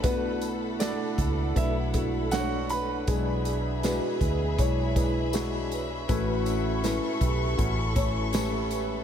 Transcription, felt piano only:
X:1
M:4/4
L:1/8
Q:1/4=80
K:Bm
V:1 name="Felt piano"
[A,DFB]2 [A,DFA]2 [A,DFB] [A,DFA] [A,DF=c^c]2 | [^G,DEB]2 [G,DEB]2 [G,DEc] [G,DEB] [G,DEF]2 | [A,CEB]2 [A,CEB]2 [A,CEF] [A,CEc] [A,CEB]2 |]
V:2 name="Felt piano" clef=bass
B,,3 z4 z | B,,3 z4 z | A,,3 z4 z |]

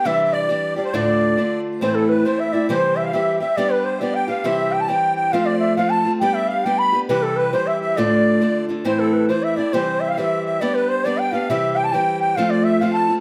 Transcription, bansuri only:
X:1
M:2/4
L:1/16
Q:"Swing" 1/4=136
K:C
V:1 name="Bansuri"
e2 d4 d c | d6 z2 | c A B2 c e d2 | c2 e f e2 e2 |
d B c2 d g f2 | e2 g a g2 g2 | f d e2 f a2 z | g e f2 g b2 z |
B A B2 c e e2 | d6 z2 | c A B2 c e d2 | c2 e f e2 e2 |
d B c2 d g f2 | e2 g a g2 g2 | f d e2 f a2 z |]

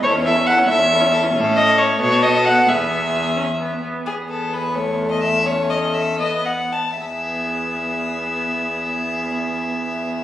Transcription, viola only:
X:1
M:6/8
L:1/16
Q:3/8=86
K:E
V:1 name="Viola"
E C E C E C E C E C E C | C6 B,6 | B,6 C2 B,2 B,2 | B,6 A,6 |
C6 B,4 z2 | B,12- | B,12 |]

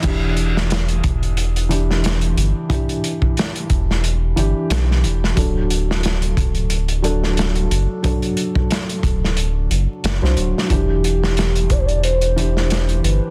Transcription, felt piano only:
X:1
M:4/4
L:1/16
Q:"Swing 16ths" 1/4=90
K:Em
V:1 name="Felt piano"
[E,DG]8- [E,DG]2 [E,DG]6 | [E,DG]8- [E,DG]2 [E,DG]6 | [F,DA]8- [F,DA]2 [F,DA]6 | [F,DA]8- [F,DA]2 z3 [F,Dc]3 |
[E,DG]8- [E,DG]2 [E,DG]6 |]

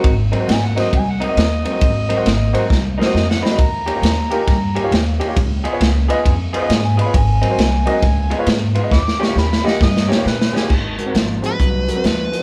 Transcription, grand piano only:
X:1
M:4/4
L:1/16
Q:"Swing" 1/4=135
K:Abmix
V:1 name="Grand piano"
z2 [Bc] [GBc] z2 [GBc] z3 [Be] [GBe] z2 [Bc] [GBc] | z2 [Bc] [GBc] z2 [GBc] z3 [Be] [GBc] z2 [Bc] [GBe] | z2 [=Gd] [FGd] z2 [FGB] z3 [Gd] [FGd] z2 [Gd] [FGd] | z2 [_ce] [Fcd] z2 [Fce] z3 [ce] [Fce] z2 [ce] [Fcd] |
z2 [Bc] [GBc] z2 [GBe] z3 [_ce] [Fcd] z2 [cf] [Fce] | z2 [=Gd] [FGd] z2 [FGe] z3 [Gd] [FGd] z2 [Gd] [FGd] | z2 [GB] [CGB] z2 [CGA] z3 [GB] [CGB] z2 [GB] z |]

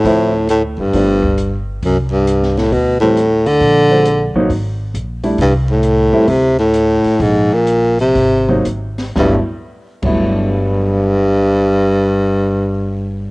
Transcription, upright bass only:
X:1
M:4/4
L:1/8
Q:"Swing" 1/4=133
K:G
V:1 name="Upright bass" clef=bass
D,,3 F,,, G,,,4 | C,,4 D,,4 | _B,,,3 A,,, _A,,,2 B,,,2 | C,,3 A,, D,,3 z |
_B,,,4 _A,,,2 A,,,2 | G,,, z2 G,,,4- G,,,- | G,,,8 |]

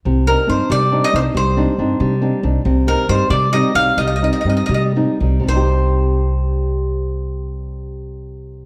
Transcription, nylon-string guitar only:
X:1
M:6/8
L:1/8
Q:3/8=87
K:Cm
V:1 name="Nylon-string guitar"
C, [CDE] [CDE] G, [CDE] [CDE] | G, [CDE] [CDE] G, [CDE] [CDE] | C, [G,CE] [G,CE] G, [G,CE] [G,CE] | G, [G,CE] [G,CE] G, [G,CE] [G,CE] |
[C,G,CEG]6- | [C,G,CEG]6 |]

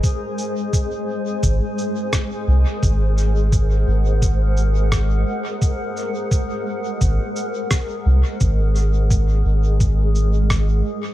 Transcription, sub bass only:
X:1
M:4/4
L:1/8
Q:"Swing 16ths" 1/4=86
K:Abmix
V:1 name="Sub bass" clef=bass
z4 A,,, z2 C,, | A,,,3 A,,,4 z | z4 A,,, z2 C,, | A,,,3 A,,,4 z |]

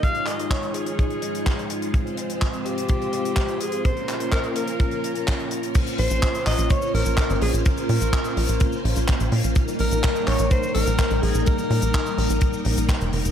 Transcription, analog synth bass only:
X:1
M:4/4
L:1/16
Q:1/4=126
K:Bbdor
V:1 name="Analog synth bass" clef=bass
z16 | z16 | z16 | z2 B,,, B,,, z2 B,,, B,,, z2 B,,, B,,, z A,,, B,,, B,,, |
z2 B,, B,,, z2 B,,, B,,, z2 B,,, B,,, z B,,, B,, B,,, | z2 B,,, B,,, z2 B,,, B,,, z2 B,,, B,,, z B,,, B,,, B,,, | z2 B,, B,,, z2 B,,, B,,, z2 B,,, B,,, z F,,, F,,, F,,, |]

